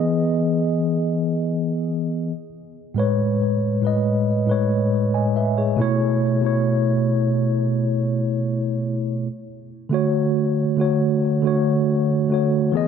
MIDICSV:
0, 0, Header, 1, 2, 480
1, 0, Start_track
1, 0, Tempo, 869565
1, 1273, Time_signature, 4, 2, 24, 8
1, 7109, End_track
2, 0, Start_track
2, 0, Title_t, "Tine electric piano"
2, 0, Program_c, 0, 4
2, 0, Control_c, 0, 64, 127
2, 0, Note_on_c, 0, 52, 83
2, 0, Note_on_c, 0, 59, 80
2, 0, Note_on_c, 0, 68, 79
2, 0, Note_on_c, 0, 75, 91
2, 333, Note_off_c, 0, 52, 0
2, 337, Note_off_c, 0, 59, 0
2, 342, Note_off_c, 0, 68, 0
2, 347, Note_off_c, 0, 75, 0
2, 1279, Control_c, 0, 64, 0
2, 1374, Control_c, 0, 64, 127
2, 1625, Note_on_c, 0, 45, 82
2, 1634, Note_on_c, 0, 56, 78
2, 1645, Note_on_c, 0, 71, 76
2, 1653, Note_on_c, 0, 73, 95
2, 1941, Note_off_c, 0, 45, 0
2, 1945, Note_off_c, 0, 56, 0
2, 1951, Note_off_c, 0, 71, 0
2, 1955, Note_off_c, 0, 73, 0
2, 2107, Note_on_c, 0, 45, 73
2, 2115, Note_on_c, 0, 56, 67
2, 2124, Note_on_c, 0, 71, 68
2, 2134, Note_on_c, 0, 75, 81
2, 2343, Note_off_c, 0, 45, 0
2, 2348, Note_off_c, 0, 56, 0
2, 2352, Note_off_c, 0, 71, 0
2, 2357, Note_off_c, 0, 75, 0
2, 2464, Note_on_c, 0, 45, 79
2, 2473, Note_on_c, 0, 56, 73
2, 2481, Note_on_c, 0, 71, 78
2, 2491, Note_on_c, 0, 73, 92
2, 2717, Note_off_c, 0, 71, 0
2, 2722, Note_off_c, 0, 73, 0
2, 2780, Note_off_c, 0, 45, 0
2, 2785, Note_off_c, 0, 56, 0
2, 2839, Note_on_c, 0, 80, 62
2, 2843, Note_on_c, 0, 75, 57
2, 2950, Note_off_c, 0, 80, 0
2, 2952, Note_off_c, 0, 75, 0
2, 2960, Note_on_c, 0, 76, 69
2, 2964, Note_on_c, 0, 71, 58
2, 3071, Note_off_c, 0, 76, 0
2, 3073, Note_off_c, 0, 71, 0
2, 3079, Note_on_c, 0, 73, 64
2, 3081, Note_on_c, 0, 68, 53
2, 3182, Note_on_c, 0, 47, 105
2, 3190, Note_on_c, 0, 57, 95
2, 3201, Control_c, 0, 64, 0
2, 3201, Note_on_c, 0, 64, 99
2, 3203, Note_off_c, 0, 73, 0
2, 3210, Note_on_c, 0, 73, 114
2, 3305, Note_off_c, 0, 68, 0
2, 3305, Control_c, 0, 64, 127
2, 3421, Note_off_c, 0, 47, 0
2, 3425, Note_off_c, 0, 57, 0
2, 3431, Note_off_c, 0, 64, 0
2, 3435, Note_off_c, 0, 73, 0
2, 3539, Note_on_c, 0, 47, 88
2, 3550, Note_on_c, 0, 57, 77
2, 3559, Note_on_c, 0, 64, 74
2, 3568, Note_on_c, 0, 73, 98
2, 4170, Note_off_c, 0, 47, 0
2, 4175, Note_off_c, 0, 57, 0
2, 4179, Note_off_c, 0, 64, 0
2, 4184, Note_off_c, 0, 73, 0
2, 5120, Control_c, 0, 64, 0
2, 5232, Control_c, 0, 64, 127
2, 5461, Note_on_c, 0, 50, 85
2, 5470, Note_on_c, 0, 57, 79
2, 5480, Note_on_c, 0, 66, 75
2, 5488, Note_on_c, 0, 73, 98
2, 5779, Note_off_c, 0, 50, 0
2, 5783, Note_off_c, 0, 57, 0
2, 5788, Note_off_c, 0, 66, 0
2, 5792, Note_off_c, 0, 73, 0
2, 5943, Note_on_c, 0, 50, 72
2, 5951, Note_on_c, 0, 57, 66
2, 5961, Note_on_c, 0, 66, 68
2, 5968, Note_on_c, 0, 73, 79
2, 6181, Note_off_c, 0, 50, 0
2, 6186, Note_off_c, 0, 57, 0
2, 6191, Note_off_c, 0, 66, 0
2, 6194, Note_off_c, 0, 73, 0
2, 6304, Note_on_c, 0, 50, 84
2, 6313, Note_on_c, 0, 57, 73
2, 6322, Note_on_c, 0, 66, 78
2, 6332, Note_on_c, 0, 73, 91
2, 6620, Note_off_c, 0, 50, 0
2, 6625, Note_off_c, 0, 57, 0
2, 6629, Note_off_c, 0, 66, 0
2, 6634, Note_off_c, 0, 73, 0
2, 6781, Note_on_c, 0, 50, 69
2, 6790, Note_on_c, 0, 57, 65
2, 6800, Note_on_c, 0, 66, 67
2, 6809, Note_on_c, 0, 73, 78
2, 6943, Note_off_c, 0, 50, 0
2, 6947, Note_off_c, 0, 57, 0
2, 6952, Note_off_c, 0, 66, 0
2, 6957, Note_off_c, 0, 73, 0
2, 7021, Note_on_c, 0, 52, 101
2, 7030, Note_on_c, 0, 59, 95
2, 7039, Control_c, 0, 64, 0
2, 7040, Note_on_c, 0, 68, 96
2, 7048, Note_on_c, 0, 75, 116
2, 7109, Note_off_c, 0, 52, 0
2, 7109, Note_off_c, 0, 59, 0
2, 7109, Note_off_c, 0, 68, 0
2, 7109, Note_off_c, 0, 75, 0
2, 7109, End_track
0, 0, End_of_file